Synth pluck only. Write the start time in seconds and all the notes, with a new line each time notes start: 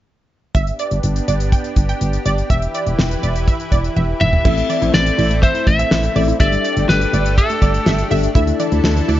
0.55 E5
0.80 D5
1.28 D5
1.52 G5
1.89 G5
2.26 D5
2.50 E5
2.75 D5
3.23 D5
3.48 E5
3.72 D5
3.97 E5
4.21 E5
4.45 E5
4.70 D5
5.19 D5
5.43 E5
5.79 E5
6.16 D5
6.40 E5
6.65 D5
7.14 D5
7.38 E5
7.62 D5
7.87 E5
8.11 E5
8.36 E5
8.60 D5
9.09 D5